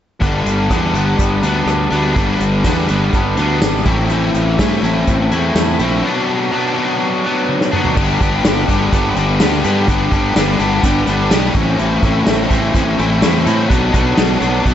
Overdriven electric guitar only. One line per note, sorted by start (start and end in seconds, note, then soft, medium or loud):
0.20 0.68 G2 medium
0.20 0.69 D3 medium
0.20 0.70 G3 medium
0.20 0.71 B3 medium
0.20 0.72 D4 medium
0.69 1.18 G2 medium
0.69 1.19 D3 medium
0.69 0.97 G3 medium
0.69 0.94 B3 medium
0.69 0.93 D4 medium
0.94 1.45 G3 medium
0.94 1.43 B3 medium
0.94 1.41 D4 medium
1.43 1.93 G3 soft
1.43 1.91 B3 medium
1.43 1.89 D4 medium
1.90 2.16 G3 medium
1.90 2.16 B3 medium
1.90 2.17 D4 medium
2.15 2.63 G2 medium
2.15 2.63 D3 medium
2.15 2.65 G3 medium
2.15 2.65 B3 medium
2.15 2.65 D4 medium
2.64 3.13 G2 medium
2.64 3.13 D3 medium
2.64 2.90 G3 medium
2.64 2.88 B3 medium
2.64 2.86 D4 medium
2.87 3.39 G3 medium
2.87 3.38 B3 medium
2.87 3.36 D4 medium
3.37 3.86 G3 soft
3.37 3.85 B3 medium
3.37 3.84 D4 medium
3.85 4.09 A2 medium
3.85 4.10 E3 medium
3.85 4.11 A3 medium
3.85 4.11 C4 medium
3.85 4.12 E4 medium
4.10 4.57 A2 medium
4.10 4.58 E3 loud
4.10 4.60 A3 medium
4.10 4.59 C4 medium
4.10 4.60 E4 medium
4.58 5.07 A2 medium
4.58 5.08 E3 medium
4.58 4.86 A3 medium
4.58 4.83 C4 medium
4.58 4.82 E4 loud
4.83 5.34 A3 medium
4.83 5.32 C4 medium
4.83 5.31 E4 medium
5.32 5.81 A3 soft
5.32 5.80 C4 soft
5.32 5.78 E4 medium
5.79 6.04 A3 medium
5.79 6.03 C4 medium
5.79 6.02 E4 medium
6.03 6.50 B2 loud
6.03 6.51 F#3 medium
6.03 6.52 B3 medium
6.03 6.53 D4 loud
6.51 7.00 B2 medium
6.51 6.78 F#3 medium
6.51 6.76 B3 medium
6.51 6.75 D4 medium
6.76 7.26 F#3 medium
6.76 7.25 B3 medium
6.76 7.23 D4 medium
7.24 7.73 F#3 soft
7.24 7.72 B3 medium
7.24 7.70 D4 medium
7.71 7.96 F#3 medium
7.71 7.95 B3 medium
7.71 7.95 D4 medium
7.96 8.19 G2 medium
7.96 8.19 D3 medium
7.96 8.21 G3 medium
7.96 8.21 B3 medium
7.96 8.22 D4 loud
7.96 8.22 G4 medium
8.20 8.43 G2 medium
8.20 8.44 D3 medium
8.20 8.45 G3 medium
8.20 8.46 B3 medium
8.20 8.46 D4 medium
8.20 8.47 G4 medium
8.44 8.67 G2 medium
8.44 8.68 D3 medium
8.44 8.69 G3 medium
8.44 8.69 B3 medium
8.44 8.69 D4 medium
8.44 8.71 G4 medium
8.68 8.91 G2 medium
8.68 8.92 D3 loud
8.68 8.93 G3 medium
8.68 8.93 B3 medium
8.68 8.93 D4 loud
8.68 8.95 G4 loud
8.92 9.15 G2 medium
8.92 9.15 D3 medium
8.92 9.17 G3 medium
8.92 9.16 B3 medium
8.92 9.17 D4 medium
8.92 9.18 G4 medium
9.16 9.39 G2 medium
9.16 9.39 D3 medium
9.16 9.41 G3 medium
9.16 9.41 B3 medium
9.16 9.41 D4 medium
9.16 9.42 G4 medium
9.40 9.63 G2 medium
9.40 9.63 D3 medium
9.40 9.65 G3 medium
9.40 9.64 B3 medium
9.40 9.65 D4 medium
9.40 9.66 G4 medium
9.64 9.86 G2 medium
9.64 9.87 D3 medium
9.64 9.88 G3 medium
9.64 9.88 B3 medium
9.64 9.88 D4 medium
9.64 9.90 G4 medium
9.87 10.10 G2 loud
9.87 10.10 D3 medium
9.87 10.12 G3 medium
9.87 10.12 B3 loud
9.87 10.12 D4 loud
9.87 10.13 G4 loud
10.11 10.33 G2 medium
10.11 10.34 D3 medium
10.11 10.35 G3 medium
10.11 10.35 B3 medium
10.11 10.35 D4 medium
10.11 10.37 G4 medium
10.34 10.57 G2 medium
10.34 10.58 D3 medium
10.34 10.59 G3 medium
10.34 10.59 B3 medium
10.34 10.59 D4 medium
10.34 10.61 G4 medium
10.58 10.82 G2 medium
10.58 10.82 D3 loud
10.58 10.83 G3 medium
10.58 10.83 B3 loud
10.58 10.84 D4 medium
10.58 10.85 G4 loud
10.83 11.05 G2 medium
10.83 11.06 D3 medium
10.83 11.07 G3 medium
10.83 11.07 B3 medium
10.83 11.08 D4 medium
10.83 11.08 G4 medium
11.07 11.29 G2 medium
11.07 11.30 D3 medium
11.07 11.30 G3 medium
11.07 11.31 B3 medium
11.07 11.31 D4 medium
11.07 11.32 G4 medium
11.30 11.53 G2 medium
11.30 11.54 D3 medium
11.30 11.54 G3 medium
11.30 11.54 B3 medium
11.30 11.54 D4 loud
11.30 11.55 G4 medium
11.55 11.77 A2 medium
11.55 11.78 E3 loud
11.55 11.80 A3 loud
11.55 11.79 C4 medium
11.55 11.80 E4 loud
11.78 12.01 A2 medium
11.78 12.02 E3 loud
11.78 12.03 A3 medium
11.78 12.03 C4 loud
11.78 12.03 E4 loud
12.02 12.24 A2 medium
12.02 12.25 E3 medium
12.02 12.26 A3 medium
12.02 12.26 C4 medium
12.02 12.27 E4 medium
12.26 12.48 A2 medium
12.26 12.49 E3 medium
12.26 12.50 A3 medium
12.26 12.50 C4 medium
12.26 12.50 E4 medium
12.49 12.73 A2 medium
12.49 12.73 E3 medium
12.49 12.74 A3 medium
12.49 12.74 C4 loud
12.49 12.75 E4 loud
12.74 12.96 A2 medium
12.74 12.97 E3 medium
12.74 12.97 A3 medium
12.74 12.98 C4 medium
12.74 12.99 E4 medium
12.97 13.20 A2 medium
12.97 13.21 E3 medium
12.97 13.21 A3 medium
12.97 13.22 C4 medium
12.97 13.22 E4 medium
13.21 13.43 A2 medium
13.21 13.44 E3 medium
13.21 13.45 A3 medium
13.21 13.45 C4 medium
13.21 13.46 E4 medium
13.44 13.68 A2 medium
13.44 13.68 E3 medium
13.44 13.69 A3 medium
13.44 13.69 C4 medium
13.44 13.69 E4 loud
13.69 13.92 B2 medium
13.69 13.93 F#3 medium
13.69 13.94 B3 medium
13.69 13.94 D4 loud
13.93 14.16 B2 medium
13.93 14.17 F#3 medium
13.93 14.18 B3 medium
13.93 14.18 D4 medium
14.17 14.40 B2 medium
14.17 14.41 F#3 medium
14.17 14.42 B3 medium
14.17 14.42 D4 medium
14.41 14.64 B2 medium
14.41 14.65 F#3 medium
14.41 14.66 B3 loud
14.41 14.66 D4 loud
14.65 14.74 B2 medium
14.65 14.74 F#3 medium
14.65 14.74 B3 medium
14.65 14.74 D4 medium